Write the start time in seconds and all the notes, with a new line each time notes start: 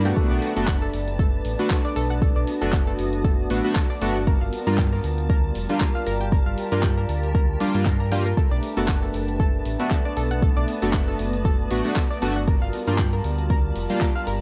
Already playing: G2 G3 F4 G4 A#4 D5 A#5 D6
0.05 A3 B3 D4 F#4 G5, closed hi-hat
0.17 A3 B3 D4 A4 B4 A5, kick, closed hi-hat
0.31 B1 D5
0.42 open hi-hat
0.56 F#1 A3 B3 D4 F#4 A4, closed hi-hat
0.68 F#5, kick, clap, closed hi-hat
0.82 A4
0.94 F#1, open hi-hat
1.02 F#4
1.08 closed hi-hat
1.19 A4, kick, closed hi-hat
1.45 A1, open hi-hat
1.59 A3 B3 D4 F#4, closed hi-hat
1.70 A4, kick, clap, closed hi-hat
1.85 D5
1.96 B1 A4, open hi-hat
2.10 F#5, closed hi-hat
2.22 A4, kick, closed hi-hat
2.36 B1 D5
2.48 open hi-hat
2.62 F#1 A3 B3 D4 F#4 A4, closed hi-hat
2.73 F#5, kick, clap, closed hi-hat
2.87 A4
2.99 F#1, open hi-hat
3.13 closed hi-hat
3.24 A4, kick, closed hi-hat
3.50 A1 A3 B3 D4 F#4, open hi-hat
3.64 A3 B3 D4 F#4, closed hi-hat
3.75 A4, kick, clap, closed hi-hat
3.90 D5
4.01 G1 A3 B3 D4 F#4 A4, open hi-hat
4.16 F#5, closed hi-hat
4.27 G3 F4 G4 A#4, kick, closed hi-hat
4.41 G1 F5
4.53 open hi-hat
4.67 G2 G3 A#3 D4 F4 A#4, closed hi-hat
4.78 G5, kick, clap, closed hi-hat
4.92 A#4
4.98 A#4
5.04 D2, open hi-hat
5.18 closed hi-hat
5.30 A#4, kick, closed hi-hat
5.55 F1, open hi-hat
5.69 G3 A#3 D4 F4, closed hi-hat
5.80 A#4, kick, clap, closed hi-hat
5.95 F5
6.06 G1 A#4, open hi-hat
6.21 G5, closed hi-hat
6.32 A#4, kick, closed hi-hat
6.46 G1 F5
6.58 open hi-hat
6.72 G2 G3 A#3 D4 F4 A#4, closed hi-hat
6.83 G5, kick, clap, closed hi-hat
6.98 A#4
7.09 D2, open hi-hat
7.23 closed hi-hat
7.35 A#4, kick, closed hi-hat
7.60 G3 A#3 D4 F4 D5, open hi-hat
7.74 G2 G3 A#3 D4 F4, closed hi-hat
7.86 A#4, kick, clap, closed hi-hat
8.00 A#5
8.12 G3 A#3 D4 F4 G5, open hi-hat
8.26 A#4, closed hi-hat
8.37 A3 B3 D4 A4 B4, kick, closed hi-hat
8.51 B1 D5
8.63 D5, open hi-hat
8.77 F#1 A3 B3 D4 F#4 A4, closed hi-hat
8.88 F#4 F#5, kick, clap, closed hi-hat
9.03 A4
9.14 F#1, open hi-hat
9.28 closed hi-hat
9.40 A4, kick, closed hi-hat
9.65 A1, open hi-hat
9.80 A3 B3 D4 F#4, closed hi-hat
9.91 A4, kick, clap, closed hi-hat
10.05 D5
10.17 B1 A4, open hi-hat
10.31 F#5, closed hi-hat
10.42 A4, kick, closed hi-hat
10.56 B1 D5
10.68 open hi-hat
10.82 F#1 A3 B3 D4 F#4 A4, closed hi-hat
10.93 F#5, kick, clap, closed hi-hat
11.08 A4
11.19 F#1, open hi-hat
11.33 closed hi-hat
11.45 A4, kick, closed hi-hat
11.71 A1 A3 B3 D4 F#4, open hi-hat
11.85 A3 B3 D4 F#4, closed hi-hat
11.96 A4, kick, clap, closed hi-hat
12.10 D5
12.22 G1 A3 B3 D4 F#4 A4, open hi-hat
12.36 F#5, closed hi-hat
12.47 G3 F4 G4 A#4, kick, closed hi-hat
12.62 G1 F5
12.73 open hi-hat
12.87 G2 G3 A#3 D4 F4 A#4, closed hi-hat
12.98 G5, kick, clap, closed hi-hat
13.13 A#4
13.24 D2, open hi-hat
13.39 closed hi-hat
13.50 A#4, kick, closed hi-hat
13.63 A#4
13.76 F1, open hi-hat
13.90 G3 A#3 D4 F4, closed hi-hat
14.01 A#4, kick, clap, closed hi-hat
14.16 F5
14.27 G1 A#4, open hi-hat